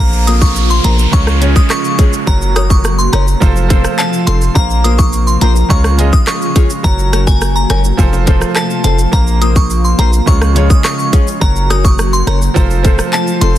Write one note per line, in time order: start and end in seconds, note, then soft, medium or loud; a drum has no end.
0.00 0.80 A#1 loud
0.00 1.12 C3 medium
0.00 2.25 F3 medium
0.00 0.94 A#3 medium
0.00 1.12 A#3 medium
0.00 1.12 F4 medium
0.00 0.94 A#4 medium
0.00 0.94 C5 medium
0.00 0.95 F5 medium
0.00 downlifter medium
0.13 shaker medium
0.27 0.41 A#3 medium
0.27 0.41 F4 medium
0.27 0.42 A#4 medium
0.27 0.42 C5 medium
0.27 0.36 D#6 medium
0.27 closed hi-hat medium
0.27 shaker medium
0.41 0.51 C#6 medium
0.41 kick loud
0.41 shaker medium
0.56 shaker medium
0.70 0.79 C6 medium
0.70 shaker medium
0.84 1.07 A#1 loud
0.84 0.98 A#3 medium
0.84 0.98 F4 medium
0.84 0.98 A#4 medium
0.84 0.97 C5 medium
0.84 0.94 A#5 medium
0.84 closed hi-hat medium
0.84 shaker medium
0.98 muted nylon-string guitar stroke soft
0.98 shaker medium
1.12 1.58 C#2 loud
1.12 1.36 C#3 medium
1.12 3.39 C#3 medium
1.12 1.37 G#3 medium
1.12 2.26 G#3 medium
1.12 1.37 F4 medium
1.12 2.26 F4 medium
1.12 1.37 C#5 medium
1.12 1.22 C#6 medium
1.12 kick medium
1.12 shaker medium
1.27 cross-stick loud
1.27 shaker medium
1.27 shaker soft
1.40 2.13 C#3 medium
1.40 2.13 G#3 medium
1.40 1.55 C#4 medium
1.40 1.55 F4 medium
1.40 2.13 F4 medium
1.40 1.55 G#4 medium
1.40 1.54 C#5 medium
1.40 2.14 C#5 medium
1.40 closed hi-hat medium
1.40 shaker medium
1.55 1.65 D#6 medium
1.55 muted nylon-string guitar stroke medium
1.55 kick medium
1.55 shaker medium
1.70 2.11 C#6 medium
1.70 cross-stick medium
1.70 clap medium
1.70 shaker medium
1.84 shaker medium
1.98 2.13 C#4 medium
1.98 2.13 F4 medium
1.98 2.13 G#4 loud
1.98 2.13 C#5 medium
1.98 kick medium
1.98 closed hi-hat medium
1.98 shaker medium
2.13 shaker medium
2.26 3.09 F#1 loud
2.26 3.22 F#3 medium
2.26 3.40 F#3 medium
2.26 3.41 A#3 medium
2.26 3.23 F#4 medium
2.26 3.40 F#4 medium
2.26 3.23 A#4 medium
2.26 3.24 C#5 medium
2.26 2.36 A#5 loud
2.26 kick loud
2.26 shaker medium
2.41 shaker medium
2.56 2.70 C#4 medium
2.56 2.70 F#4 medium
2.56 2.70 A#4 medium
2.56 2.71 C#5 medium
2.56 2.65 D#6 medium
2.56 cross-stick loud
2.56 closed hi-hat medium
2.56 shaker medium
2.70 2.79 C#6 medium
2.70 kick loud
2.70 shaker medium
2.84 cross-stick medium
2.84 shaker medium
2.99 3.08 C6 medium
2.99 shaker medium
3.12 3.36 F#1 medium
3.12 3.27 C#4 medium
3.12 3.27 F#4 medium
3.12 3.26 A#4 medium
3.12 3.26 C#5 loud
3.12 3.22 A#5 medium
3.12 cross-stick medium
3.12 closed hi-hat medium
3.12 shaker medium
3.27 muted nylon-string guitar stroke soft
3.27 shaker medium
3.40 3.87 F1 loud
3.40 5.68 C3 medium
3.40 3.65 F3 loud
3.40 4.54 F3 medium
3.40 4.54 A3 medium
3.40 3.65 F4 medium
3.40 6.81 F4 medium
3.40 3.66 A4 medium
3.40 3.66 C5 loud
3.40 kick medium
3.40 shaker medium
3.56 shaker soft
3.68 4.41 F3 medium
3.68 3.84 C4 loud
3.68 4.41 F4 medium
3.68 3.84 F4 medium
3.68 4.42 A4 medium
3.68 3.84 A4 loud
3.68 4.42 C5 loud
3.68 3.83 C5 loud
3.68 kick loud
3.68 closed hi-hat medium
3.68 shaker medium
3.84 muted nylon-string guitar stroke medium
3.84 cross-stick medium
3.84 shaker medium
3.98 4.08 A5 medium
3.98 clap medium
3.98 shaker medium
4.13 shaker medium
4.27 4.50 F1 medium
4.27 4.41 C4 medium
4.27 4.42 F4 medium
4.27 4.42 A4 medium
4.27 4.42 C5 medium
4.27 4.36 C6 medium
4.27 closed hi-hat medium
4.27 high timbale medium
4.27 shaker medium
4.42 shaker medium
4.54 5.37 A#1 loud
4.54 6.82 F3 medium
4.54 5.51 A#3 medium
4.54 5.69 A#3 medium
4.54 5.51 A#4 medium
4.54 5.52 C5 medium
4.54 5.52 F5 medium
4.54 4.65 A#5 loud
4.54 kick loud
4.54 shaker medium
4.70 shaker medium
4.84 4.98 A#3 medium
4.84 4.99 F4 medium
4.84 4.99 A#4 medium
4.84 4.99 C5 loud
4.84 4.93 D#6 medium
4.84 closed hi-hat medium
4.84 shaker medium
4.98 5.08 C#6 medium
4.98 kick medium
4.98 shaker medium
5.13 shaker medium
5.27 5.36 C6 medium
5.27 shaker medium
5.41 5.64 A#1 loud
5.41 5.56 A#3 medium
5.41 5.55 F4 loud
5.41 5.55 A#4 medium
5.41 5.54 C5 loud
5.41 5.51 A#5 medium
5.41 closed hi-hat medium
5.41 shaker medium
5.55 muted nylon-string guitar stroke medium
5.55 shaker medium
5.69 6.15 C#2 loud
5.69 5.93 C#3 medium
5.69 7.96 C#3 medium
5.69 5.94 G#3 medium
5.69 6.83 G#3 medium
5.69 5.94 F4 medium
5.69 5.94 C#5 medium
5.69 5.79 C#6 medium
5.69 kick medium
5.69 shaker medium
5.84 cross-stick loud
5.84 shaker soft
5.84 shaker medium
5.97 6.70 C#3 medium
5.97 6.70 G#3 medium
5.97 6.13 C#4 medium
5.97 6.13 F4 medium
5.97 6.71 F4 medium
5.97 6.12 G#4 medium
5.97 6.12 C#5 medium
5.97 6.71 D#5 medium
5.97 closed hi-hat medium
5.97 shaker medium
6.13 6.22 D#6 medium
6.13 kick loud
6.13 shaker medium
6.27 6.68 C#6 medium
6.27 cross-stick medium
6.27 clap medium
6.27 shaker medium
6.41 shaker soft
6.41 shaker medium
6.55 6.70 C#4 medium
6.55 6.70 F4 medium
6.55 6.70 G#4 medium
6.55 6.71 C#5 loud
6.55 kick medium
6.55 closed hi-hat medium
6.55 shaker medium
6.70 shaker medium
6.83 7.66 F#1 loud
6.83 7.79 F#3 medium
6.83 7.98 F#3 medium
6.83 7.98 A#3 medium
6.83 7.80 F#4 medium
6.83 7.98 F#4 medium
6.83 7.80 A#4 medium
6.83 7.81 C#5 medium
6.83 6.93 A#5 loud
6.83 kick loud
6.83 shaker medium
6.98 shaker medium
7.12 7.27 C#4 medium
7.12 7.27 F#4 medium
7.12 7.27 A#4 medium
7.12 7.28 C#5 medium
7.12 7.22 A#5 medium
7.12 cross-stick loud
7.12 closed hi-hat medium
7.12 shaker medium
7.27 7.36 G#5 medium
7.27 kick medium
7.27 shaker medium
7.41 cross-stick medium
7.41 shaker medium
7.56 7.65 A#5 medium
7.56 shaker medium
7.70 7.92 F#1 loud
7.70 7.84 C#4 medium
7.70 7.84 F#4 medium
7.70 7.84 A#4 loud
7.70 7.83 C#5 loud
7.70 7.79 G#5 medium
7.70 cross-stick medium
7.70 closed hi-hat medium
7.70 shaker medium
7.84 muted nylon-string guitar stroke soft
7.84 shaker medium
7.97 8.44 F1 loud
7.97 10.25 C3 medium
7.97 8.22 F3 loud
7.97 11.38 F3 medium
7.97 9.12 A3 medium
7.97 8.22 F4 medium
7.97 11.38 F4 medium
7.97 8.23 A4 medium
7.97 8.23 C5 loud
7.97 kick medium
7.97 shaker medium
8.13 high timbale medium
8.13 shaker soft
8.26 8.98 F3 medium
8.26 8.41 C4 medium
8.26 8.99 F4 medium
8.26 8.41 F4 loud
8.26 8.99 A4 medium
8.26 8.41 A4 loud
8.26 8.40 C5 loud
8.26 9.00 C5 loud
8.26 kick loud
8.26 closed hi-hat medium
8.26 shaker medium
8.41 muted nylon-string guitar stroke soft
8.41 cross-stick medium
8.41 shaker medium
8.56 8.65 A5 medium
8.56 cross-stick medium
8.56 clap medium
8.56 shaker medium
8.70 shaker soft
8.70 shaker medium
8.84 9.07 F1 medium
8.84 8.98 C4 loud
8.84 8.99 F4 loud
8.84 8.99 A4 loud
8.84 8.99 C5 loud
8.84 8.93 A5 medium
8.84 closed hi-hat medium
8.84 high timbale medium
8.84 shaker medium
8.99 shaker medium
9.11 9.95 A#1 loud
9.11 10.08 A#3 medium
9.11 10.26 A#3 medium
9.11 10.08 A#4 medium
9.11 10.09 C5 medium
9.11 10.09 F5 medium
9.11 9.22 A#5 loud
9.11 kick loud
9.11 shaker medium
9.27 shaker medium
9.41 9.55 A#3 medium
9.41 9.56 F4 medium
9.41 9.56 A#4 medium
9.41 9.56 C5 loud
9.41 9.51 D#6 medium
9.41 closed hi-hat medium
9.41 shaker medium
9.56 9.65 C#6 medium
9.56 kick loud
9.56 shaker medium
9.70 shaker medium
9.85 9.94 C6 medium
9.85 shaker medium
9.98 10.21 A#1 loud
9.98 10.13 A#3 medium
9.98 10.13 F4 medium
9.98 10.12 A#4 medium
9.98 10.12 C5 loud
9.98 10.08 A#5 medium
9.98 closed hi-hat medium
9.98 shaker medium
10.13 muted nylon-string guitar stroke soft
10.13 shaker medium
10.26 10.72 C#2 loud
10.26 10.50 C#3 medium
10.26 12.54 C#3 medium
10.26 10.51 G#3 medium
10.26 11.40 G#3 medium
10.26 10.51 F4 medium
10.26 10.52 C#5 loud
10.26 10.36 C#6 medium
10.26 kick medium
10.26 shaker medium
10.42 cross-stick loud
10.42 shaker soft
10.54 11.27 C#3 medium
10.54 11.27 G#3 medium
10.54 10.70 C#4 medium
10.54 10.70 F4 medium
10.54 11.28 F4 medium
10.54 10.69 G#4 medium
10.54 10.69 C#5 loud
10.54 11.28 C#5 medium
10.54 closed hi-hat medium
10.54 shaker medium
10.70 10.79 D#6 medium
10.70 kick loud
10.70 shaker medium
10.84 11.25 C#6 medium
10.84 cross-stick medium
10.84 clap medium
10.84 shaker medium
10.99 shaker soft
10.99 shaker medium
11.13 11.27 C#4 medium
11.13 11.27 F4 medium
11.13 11.27 G#4 loud
11.13 11.28 C#5 loud
11.13 kick medium
11.13 closed hi-hat medium
11.13 shaker medium
11.27 shaker medium
11.40 12.23 F#1 loud
11.40 12.37 F#3 medium
11.40 12.55 F#3 medium
11.40 12.55 A#3 medium
11.40 12.37 F#4 medium
11.40 12.55 F#4 medium
11.40 12.37 A#4 medium
11.40 12.38 C#5 medium
11.40 11.50 A#5 loud
11.40 kick loud
11.40 shaker medium
11.56 shaker medium
11.70 11.84 C#4 medium
11.70 11.84 F#4 medium
11.70 11.85 A#4 medium
11.70 11.85 C#5 medium
11.70 11.79 D#6 medium
11.70 cross-stick loud
11.70 closed hi-hat medium
11.70 shaker medium
11.85 11.94 C#6 medium
11.85 kick loud
11.85 shaker medium
11.99 cross-stick medium
11.99 shaker medium
12.13 12.22 C6 medium
12.13 shaker medium
12.27 12.50 F#1 medium
12.27 12.41 C#4 medium
12.27 12.41 F#4 medium
12.27 12.41 A#4 medium
12.27 12.40 C#5 loud
12.27 12.36 A#5 medium
12.27 cross-stick medium
12.27 closed hi-hat medium
12.27 shaker medium
12.41 muted nylon-string guitar stroke medium
12.41 shaker medium
12.54 13.01 F1 loud
12.54 13.58 C3 medium
12.54 12.79 F3 loud
12.54 13.58 F3 medium
12.54 13.58 A3 medium
12.54 12.79 F4 medium
12.54 13.58 F4 medium
12.54 12.80 A4 medium
12.54 12.80 C5 loud
12.54 kick medium
12.54 shaker medium
12.71 shaker soft
12.83 13.55 F3 medium
12.83 12.98 C4 medium
12.83 13.56 F4 medium
12.83 12.98 F4 loud
12.83 13.56 A4 medium
12.83 12.98 A4 loud
12.83 12.97 C5 medium
12.83 13.57 C5 loud
12.83 kick loud
12.83 closed hi-hat medium
12.83 shaker medium
12.99 muted nylon-string guitar stroke medium
12.99 cross-stick medium
12.99 shaker medium
13.13 13.22 A5 medium
13.13 clap medium
13.13 shaker medium
13.27 shaker medium
13.41 13.58 F1 medium
13.41 13.56 C4 loud
13.41 13.56 F4 loud
13.41 13.56 A4 loud
13.41 13.56 C5 loud
13.41 13.50 C6 medium
13.41 closed hi-hat medium
13.41 high timbale medium
13.41 shaker medium